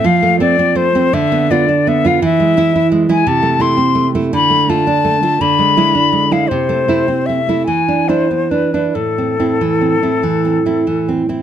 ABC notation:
X:1
M:6/8
L:1/16
Q:3/8=55
K:Am
V:1 name="Flute"
f2 d2 c2 e2 d2 e f | e4- e ^g a2 c'3 z | b2 a4 b4- b f | c4 e2 ^g2 c2 B2 |
A8- A2 z2 |]
V:2 name="Nylon-string guitar"
F, A, [A,C] C A, [A,C] D, B, [B,F] D B, [B,F] | E, ^G, [G,E] E G, [G,E] C, A, [A,E] C A, [A,E] | D, A, [A,F] D A, [A,F] D, ^G, [G,E] D G, [G,E] | C, A, [A,E] C A, [A,E] E, D [DE] B, D [DE] |
A,, C [CE] E, C [CE] E, C [CE] E, C [CE] |]